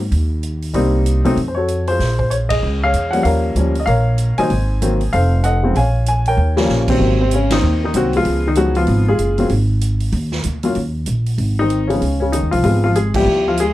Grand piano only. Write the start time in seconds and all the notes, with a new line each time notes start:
0.74 G3 A#3 C4 D#4
1.25 F#3 A3 C4 D#4
1.48 C5
1.55 F#4 A4 C#5
1.88 F4 G#4 C5
2.19 C5
2.30 C#5
2.49 G#4 D#5
2.84 G#4 C#5 F5
3.11 F3 G3 A#3 C#4 F#5
3.23 A#4 C#5 F5
3.56 F3 G3 A#3 C#4
3.80 D#5
3.86 A#4 C#5 F5
4.38 D#3 F#3 A#3 D#4 C5 D#5 G#5
4.82 D#3 F#3 A#3 C4
5.13 A4 C5 F5
5.44 A4 D#5 F#5
5.63 C#3 F3 G#3 C4
5.77 C#5 F5 G#5
6.08 G#5
6.28 A#4 C#5 G5
6.57 C#3 F3 G3 A#3 C#4
6.90 C3 D#3 F#3 C4
7.00 D#3 F#3 A#3 C4
7.21 C3 C4
7.34 C#3 C#4
7.52 D#3 C4 D#4
7.84 D#3 D#4
7.94 D#3 F#3 A#3 C4 F#4
8.16 F3 G#3 B3 F4
8.47 D#3 D#4
8.56 F3 F#3 G#3 B3 D#4 F#4
8.76 F3 B3 F4
9.08 G#3 F4 G#4
9.38 F#3 A#3 C4 F4
10.64 F#3 A#3 C#4 F4
11.59 D#3 C4 D#4
11.87 C#3 F3 G#3 B3 C#4 D#4
12.20 C#3 C#4
12.32 D#3 D#4
12.51 F3 F4
12.64 F3 G#3 B3 F4
12.84 F3 F4
12.96 G#3 G#4
13.14 F3 G3 B3 E4 G4
13.48 F3 F4
13.60 G#3 G#4